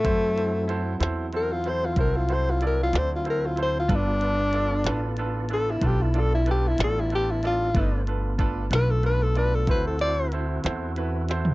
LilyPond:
<<
  \new Staff \with { instrumentName = "Tenor saxophone" } { \time 12/8 \key g \mixolydian \tempo 4. = 62 a4. r8 bes'16 f'16 c''16 f'16 bes'16 f'16 c''16 f'16 bes'16 f'16 c''16 f'16 bes'16 f'16 c''16 f'16 | d'2 r8 a'16 e'16 g'16 e'16 a'16 e'16 g'16 e'16 a'16 e'16 g'16 e'16 f'8~ | f'8 r4 b'16 a'16 b'16 a'16 b'16 a'16 b'16 a'16 d''8 r2 | }
  \new Staff \with { instrumentName = "Grand piano" } { \time 12/8 \key g \mixolydian <e' fis' a' c''>8 <e' fis' a' c''>8 <e' fis' a' c''>8 <e' fis' a' c''>8 <e' fis' a' c''>8 <e' fis' a' c''>8 <e' fis' a' c''>8 <e' fis' a' c''>8 <e' fis' a' d''>8 <e' fis' a' d''>8 <e' fis' a' c''>8 <e' fis' a' c''>8 | <d' f' a' b'>8 <d' f' a' b'>8 <d' f' a' d''>8 <d' f' a' b'>8 <d' f' a' b'>8 <d' f' a' b'>8 <d' f' a' b'>8 <d' f' a' d''>8 <d' f' a' b'>8 <d' f' a' d''>8 <d' f' a' b'>8 <d' f' a' d''>8 | <d' f' a' b'>8 <d' f' a' b'>8 <d' f' a' b'>8 <d' f' a' b'>8 <d' f' a' b'>8 <d' f' a' d''>8 <e' fis' a' c''>8 <e' fis' a' c''>8 <e' fis' a' c''>8 <e' fis' a' c''>8 <e' fis' a' b'>8 <e' fis' a' c''>8 | }
  \new Staff \with { instrumentName = "Tonewheel organ" } { \time 12/8 \key g \mixolydian <fis c' e'>1. | <b f' a'>1. | <a b f'>2. <c' e' fis'>2. | }
  \new Staff \with { instrumentName = "Upright bass" } { \clef bass \time 12/8 \key g \mixolydian fis,4. e,4. c,4. d,4. | g,,4. a,,4. b,,4. a,,4. | g,,4. b,,4. d,4. e,4. | }
  \new DrumStaff \with { instrumentName = "Drums" } \drummode { \time 12/8 <hh bd>8 hh8 hh8 <hh sn>8 hh8 hh8 <hh bd>8 hh8 hh8 <hh sn>8 hh8 hh8 | <hh bd>8 hh8 hh8 <hh sn>8 hh8 hh8 <hh bd>8 hh8 hh8 <hh sn>8 hh8 <hh sn>8 | <hh bd>8 hh8 <hh bd>8 <hh sn>8 hh8 hh8 <hh bd>8 hh8 hh8 <hh sn>8 hh8 <hh sn>16 tomfh16 | }
>>